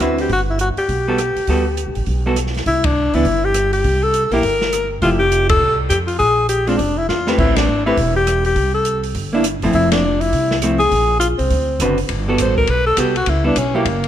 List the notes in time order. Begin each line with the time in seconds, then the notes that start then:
0.00 D2 D3 C4 E4 F#4 B4, cross-stick, closed hi-hat
0.18 G4, open hi-hat
0.29 G1 F#4, kick, open hi-hat
0.50 E4
0.59 F#4, closed hi-hat
0.76 G4, muted upright bass stroke, open hi-hat
0.89 B1, kick, open hi-hat
1.08 G3 B3 F#4 A4
1.18 cross-stick, closed hi-hat
1.36 muted upright bass stroke, open hi-hat
1.47 D2 G3 B3 F#4 A4, kick, open hi-hat
1.77 closed hi-hat
1.87 B1
1.95 A1, open hi-hat
2.06 B1, kick, open hi-hat
2.26 G3 B3 F#4 A4
2.36 cross-stick, closed hi-hat
2.47 snare
2.54 snare, open hi-hat
2.66 C2 E4, kick, open hi-hat
2.84 D4, kick, ride
3.14 C#2 E3 B3 D4 E4, open hi-hat
3.25 G1, kick, open hi-hat
3.44 G4
3.54 cross-stick, closed hi-hat
3.73 G4, open hi-hat
3.84 C2, kick, open hi-hat
4.03 A4
4.14 closed hi-hat
4.26 A4
4.31 A#1 A#3 E4 G4 A#4, open hi-hat
4.43 G1, kick, open hi-hat
4.61 snare
4.73 cross-stick, closed hi-hat
5.02 F1 F3 A3 E4 F4 G4, kick, open hi-hat
5.19 G4
5.32 closed hi-hat
5.49 A4, kick, ride
5.60 C2
5.89 F2 G4, cross-stick, closed hi-hat
6.07 F4, open hi-hat
6.19 A#1 G#4, kick, open hi-hat
6.49 G4, closed hi-hat
6.67 G#3 C4 D4 F4, open hi-hat
6.78 F1 D4, kick, open hi-hat
6.98 E4
7.09 E2 F4, snare
7.27 A3 C4 G4 B4, snare
7.38 A1 E4, kick, crash
7.56 D4, snare, ride
7.68 G#1
7.86 A3 C4 E4 G4 B4
7.97 E1, kick, open hi-hat
8.16 G4
8.27 cross-stick, closed hi-hat
8.45 G4, open hi-hat
8.56 C2, kick, open hi-hat
8.74 A4
8.85 closed hi-hat
9.03 open hi-hat
9.15 G1, kick, open hi-hat
9.33 A#3 D4 E4
9.44 cross-stick, closed hi-hat
9.62 E1 F3 A3 C4 E4, open hi-hat
9.73 F1 E4, kick, open hi-hat
9.92 D4, snare, ride
10.21 E4, open hi-hat
10.33 C2, kick, open hi-hat
10.51 snare
10.62 F3 A3 C4 E4, cross-stick, closed hi-hat
10.79 G#4, open hi-hat
10.91 A#1, kick, open hi-hat
11.19 F4, closed hi-hat
11.38 C2 C4, open hi-hat
11.50 D2, kick, open hi-hat
11.79 F#1 D3 C4 F#4 B4, cross-stick, closed hi-hat
11.98 open hi-hat
12.09 G1, kick, ride
12.28 G3 B3 F#4 A4
12.38 A1 C5, kick, hi-hat pedal, ride
12.57 A#4, kick
12.67 B1 B4, ride
12.87 A4
12.97 C2 G3 B3 F#4 G4 A4, kick, hi-hat pedal, ride
13.16 F#4, ride
13.26 C#2 E4, kick, ride
13.44 G3 B3 D4 E4
13.56 B1 C#4, kick, hi-hat pedal, ride
13.74 F#3 A#3 E4 G4
13.85 F#1, kick, ride
14.04 ride